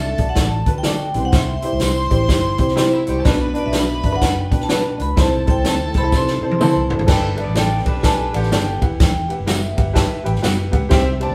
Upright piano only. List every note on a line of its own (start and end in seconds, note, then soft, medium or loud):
0.00 0.16 D3 medium
0.00 0.11 F#4 medium
0.00 0.11 A4 medium
0.00 0.11 D5 medium
0.18 0.32 F#4 medium
0.18 0.32 A4 medium
0.18 0.33 D5 medium
0.36 0.58 F#4 medium
0.36 0.59 A4 medium
0.36 0.60 D5 medium
0.66 0.80 F#4 medium
0.66 0.80 A4 medium
0.66 0.80 B4 medium
0.83 1.06 F#4 loud
0.83 1.07 A4 medium
0.83 1.07 D5 loud
1.14 1.77 C3 medium
1.14 1.51 E4 medium
1.14 1.52 G4 medium
1.14 1.20 B4 medium
1.22 1.55 C5 medium
1.62 1.76 E4 medium
1.62 1.76 G4 medium
1.62 1.77 C5 loud
1.79 2.02 E4 medium
1.79 2.03 G4 medium
1.79 2.03 C5 medium
2.09 2.24 E4 medium
2.09 2.24 G4 medium
2.09 2.24 C5 loud
2.28 2.51 E4 medium
2.28 2.51 G4 medium
2.28 2.52 C5 medium
2.58 2.72 E4 medium
2.58 2.72 G4 medium
2.58 2.72 C5 medium
2.76 2.98 E4 loud
2.76 2.99 G4 loud
2.76 2.99 C5 loud
3.07 3.20 E4 medium
3.07 3.21 G4 medium
3.07 3.21 C5 medium
3.25 4.00 B2 medium
3.25 3.47 D4 loud
3.25 3.47 F#4 loud
3.25 3.48 B4 loud
3.54 3.68 D4 loud
3.54 3.68 F#4 medium
3.54 3.69 B4 loud
3.71 3.94 D4 medium
3.71 3.95 F#4 medium
3.71 3.95 D5 medium
4.04 4.17 D4 medium
4.04 4.17 F#4 medium
4.04 4.18 B4 medium
4.21 4.43 D4 medium
4.21 4.44 F#4 medium
4.21 4.44 B4 medium
4.51 4.64 D4 medium
4.51 4.65 F#4 medium
4.51 4.65 B4 medium
4.69 4.91 D4 medium
4.69 4.91 F#4 medium
4.69 4.92 B4 loud
4.98 5.12 D4 medium
4.98 5.12 F#4 medium
4.98 5.12 B4 medium
5.16 5.91 C3 medium
5.16 5.38 E4 loud
5.16 5.39 A4 medium
5.16 5.39 C5 loud
5.46 5.60 E4 medium
5.46 5.60 A4 medium
5.46 5.61 C5 loud
5.64 5.86 E4 medium
5.64 5.87 A4 medium
5.64 5.87 C5 medium
5.95 6.08 E4 medium
5.95 6.08 A4 medium
5.95 6.09 C5 medium
6.12 6.35 E4 medium
6.12 6.35 A4 medium
6.12 6.36 C5 medium
6.41 6.55 E4 medium
6.41 6.56 A4 medium
6.41 6.56 C5 medium
6.59 6.82 E4 loud
6.59 6.82 A4 medium
6.59 6.83 C5 loud
6.89 7.03 E4 medium
6.89 7.04 A4 medium
6.89 7.04 C5 medium
7.07 7.83 G2 medium
7.07 7.30 A4 loud
7.07 7.30 B4 loud
7.07 7.30 D5 loud
7.07 7.31 G5 loud
7.36 7.50 A4 medium
7.36 7.51 B4 medium
7.36 7.51 D5 medium
7.36 7.51 E5 medium
7.54 7.77 A4 medium
7.54 7.77 B4 medium
7.54 7.78 D5 medium
7.54 7.78 G5 medium
7.85 7.99 A4 medium
7.85 7.99 B4 medium
7.85 7.99 D5 medium
7.85 8.00 G5 medium
8.03 8.26 A4 loud
8.03 8.26 B4 medium
8.03 8.26 D5 loud
8.03 8.27 A5 loud
8.33 8.47 A4 medium
8.33 8.47 B4 medium
8.33 8.47 D5 medium
8.33 8.48 F#5 medium
8.51 8.73 A4 medium
8.51 8.74 B4 medium
8.51 8.74 D5 medium
8.51 8.74 G5 medium
8.81 9.44 E3 medium
8.81 9.18 G4 medium
8.81 9.18 B4 medium
8.81 9.18 E5 medium
8.81 9.19 F#5 medium
9.29 9.42 G4 medium
9.29 9.43 B4 medium
9.29 9.43 E5 medium
9.29 9.43 F#5 medium
9.46 9.69 G4 medium
9.46 9.69 B4 medium
9.46 9.69 E5 medium
9.46 9.69 F#5 medium
9.76 9.90 G4 medium
9.76 9.90 B4 medium
9.76 9.90 E5 medium
9.76 9.91 F#5 medium
9.93 10.16 G4 loud
9.93 10.16 B4 loud
9.93 10.17 E5 loud
9.93 10.17 A5 loud
10.24 10.38 G4 medium
10.24 10.38 B4 medium
10.24 10.38 E5 medium
10.24 10.32 G5 loud
10.24 10.34 B5 medium
10.33 10.42 G5 medium
10.42 10.64 G4 medium
10.42 10.64 B4 medium
10.42 10.65 E5 medium
10.42 10.65 F#5 loud
10.71 10.85 G4 medium
10.71 10.85 B4 medium
10.71 10.86 E5 medium
10.71 10.86 F#5 loud
10.89 11.35 C3 medium
10.89 11.12 G4 loud
10.89 11.12 C5 loud
10.89 11.12 E5 loud
10.89 11.13 G5 loud
11.20 11.33 G4 medium
11.20 11.34 C5 medium
11.20 11.34 E5 medium
11.20 11.35 A5 loud